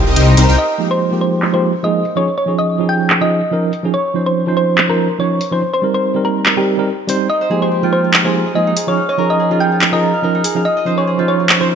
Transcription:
Already playing: D#4 F4 G4 A#4 D#5 F5 G5
0.07 C2 C4 D#4 G4 A#4 C5 D#5
0.16 C2 C4 D#4 G4 A#4 C5 D#5, closed hi-hat
0.28 D#4
0.37 C2 C4 D#4 G4 A#4 C5, open hi-hat
0.49 C2 C4 D#4 G4 A#4 G5
0.58 D#5
0.78 F3 G#3 A#3 D#4 G4
0.91 C5
1.11 F3 G#3 A#3 D#4 G4
1.21 C5
1.42 clap
1.53 F3 G#3 A#3 D#4 G4 C5
1.83 F3 G#3 A#3 D#4 G#4 D#5
2.05 open hi-hat
2.16 F3 C#4 D#4 G#4 C#5
2.38 C#5
2.46 F3 C#4 D#4 G#4
2.59 D#5
2.79 F3 C#4 D#4 G#4
2.89 G5
3.10 clap
3.21 F3 C#4 D#4 G#4 D#5
3.51 F3 C#4 D#4 A#4
3.73 open hi-hat
3.83 F3 C#4 D#4 G#4
3.94 C#5
4.14 F3 C#4 D#4 C5
4.26 C5
4.46 F3 C#4 D#4 C5
4.57 C5
4.78 clap
4.88 F3 C#4 D#4 A#4 C5
5.19 F3 C#4 D#4 C#5
5.41 open hi-hat
5.51 F3 C#4 D#4 C5
5.74 C5
5.82 G3 C4 D#4 A#4
5.94 C5
6.14 G3 C4 D#4 A#4
6.25 A#4
6.46 clap
6.56 G3 C4 D#4 G4 A#4
6.77 G3 C4 D#4 A#4
7.08 G3 C4 D#4 C5, open hi-hat
7.29 D#4 D#5
7.41 C5
7.50 F3 G#3 A#3 D#4 G4 G#4
7.62 G4 C5
7.72 G4
7.82 F3 G#3 A#3 D#4 F4 G5
7.93 D#4 C5
8.04 F4
8.13 D#4, clap
8.24 F3 G#3 A#3 D#4 G4 G#4 C5
8.34 F4
8.46 D#5
8.54 F3 G#3 A#3 D#4 G#4 D#5
8.67 D#4
8.76 G#4, open hi-hat
8.87 F3 C#4 D#4 G#4 C#5 F5
8.97 D#4
9.09 C#5 D#5
9.17 F3 C#4 D#4 G#4 A#4
9.30 G#4 D#5
9.39 G#4
9.50 F3 C#4 D#4 F4 G#4
9.60 D#4 G5
9.72 F4
9.81 D#4, clap
9.92 F3 C#4 D#4 G#4 A#4 D#5
10.02 F4
10.14 F5
10.22 F3 C#4 D#4 A#4
10.35 D#4
10.44 G#4, open hi-hat
10.55 F3 C#4 D#4 G#4 F5
10.65 D#4 D#5
10.77 D#5
10.85 F3 C#4 D#4 C5
10.98 G#4 C#5
11.07 G#4
11.18 F3 C#4 D#4 F4 C5
11.28 D#4 C#5
11.40 F4
11.49 D#4, clap
11.60 F3 C#4 D#4 C5
11.70 F4

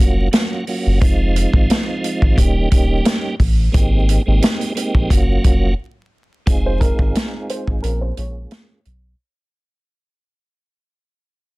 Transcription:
Already playing: F#3 A#3 C#4 F4 F#4
0.00 F1
0.31 F#3 A#3 C#4 F4 F#4, snare, closed hi-hat
0.67 F#3 A#3 C#4 F4 F#4, open hi-hat
0.86 F#1
1.00 F1 F3 G#3 C4 D#4 F4, kick, closed hi-hat
1.36 closed hi-hat
1.53 G#1, kick
1.70 snare, closed hi-hat
2.04 closed hi-hat
2.22 G#1, kick
2.36 D#1 G3 A#3 C#4 D#4 G4, kick, closed hi-hat
2.71 D#1 G3 A#3 C#4 D#4 G4, kick, closed hi-hat
3.05 snare, closed hi-hat
3.40 A1, kick, open hi-hat
3.72 G#1 G#3 A#3 C4 D#4 G4, kick, closed hi-hat
4.09 closed hi-hat
4.26 G#1 G#3 A#3 C4 D#4 G4
4.42 snare, closed hi-hat
4.61 closed hi-hat
4.75 G#3 A#3 C4 D#4 G4, closed hi-hat
4.95 A#1, kick
5.10 F#1 F#3 A#3 C#4 F4 F#4, kick, closed hi-hat
5.44 F1, kick, closed hi-hat
6.46 F1 G#3 C4 D#4 F4 G#4, kick, closed hi-hat
6.66 C5
6.80 A#4, kick, closed hi-hat
6.99 G#1, kick
7.15 snare, closed hi-hat
7.49 C5, closed hi-hat
7.67 G#1, kick
7.81 A#1 A#3 C4 C#4 F4 G#4 A#4, closed hi-hat
8.01 C5
8.16 A#1 G#3 A#3 C#4 F4 G#4 C#5, closed hi-hat
8.51 snare, closed hi-hat
8.85 B1, closed hi-hat

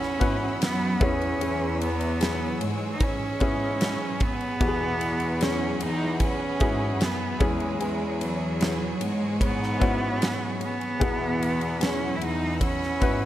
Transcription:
Already playing: B2 E3 B3 C#4 F#4 G#4 B4 F#5 B5 E6
0.02 snare
0.19 G#2 B3 E4 F#4 B4, kick, ride
0.59 F#2 B4, snare, ride
0.64 B3
1.00 E2 E3 B3 C#4 E4 G#4 C#5, kick, ride
1.21 ride
1.40 E2 E3 G#4, ride
1.81 B3 B4, ride
2.01 ride
2.20 G#4, snare, ride
2.60 G#2 G#3 B3 C#6, ride
2.95 D#4
3.00 C#4 B4, kick, ride
3.40 G#2 B3 C#4 E4 G#4, kick, ride
3.81 B4, snare, ride
4.20 B3, kick, ride
4.41 ride
4.60 E2 B2 E3 B3 F#4 G4 G#4 F#5 B5, kick, ride
4.68 G#4
5.01 B4, ride
5.20 ride
5.41 C#4 G#4, snare, ride
5.80 E2 B3 D#4, ride
6.20 C#4 B4, kick, ride
6.60 G#2 B3 E4 F#4 G#4, kick, ride
7.00 F#2 B3 B4, snare, ride
7.40 E2 E3 G#3 B3 C#4 E4 G#4 C#5, kick, ride
7.60 ride
7.80 E2 E3 G#4, ride
8.21 F#3 B4, ride
8.61 G#4, snare, ride
9.00 G#2 G#3 B3 C#6, ride
9.41 B3 B4, kick, ride
9.63 snare
9.80 B3 C#4 E4 F#4, kick, ride
10.21 B4, snare, ride
10.60 B3, ride
10.81 ride
10.99 E2 B2 E3 B3 F#4 G#4 F#5 B5 E6, kick, ride
11.40 B4, ride
11.61 ride
11.80 C#4 G#4, snare, ride
12.15 E4
12.20 E2 B3 D#4, ride
12.61 C#4 B4, kick, ride
12.83 snare
13.00 G#2 B3 E4 F#4 B4, kick, ride

